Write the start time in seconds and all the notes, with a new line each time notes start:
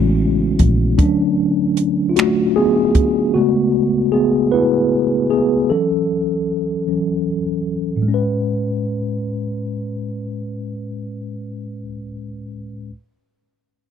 Already playing: A1 C#3 E3 G#3 A3 B3 C#4 E4 F#4
0.59 A#1, kick, closed hi-hat
0.98 D3 F#3 A3 C#4 D4, kick, closed hi-hat
1.77 closed hi-hat
2.09 F4
2.16 A3 F#4, finger snap, closed hi-hat
2.56 B3 G#4
2.95 kick, closed hi-hat
3.34 C#3 G#3 A3 B3 F#4
4.12 B3 G#4
4.52 E4 B4
5.30 B3 G#4
5.70 E3 F#3 C#4 A4
6.87 E3 F#3 C#4
7.96 A2
8.02 G#3
8.08 C#4
8.14 B4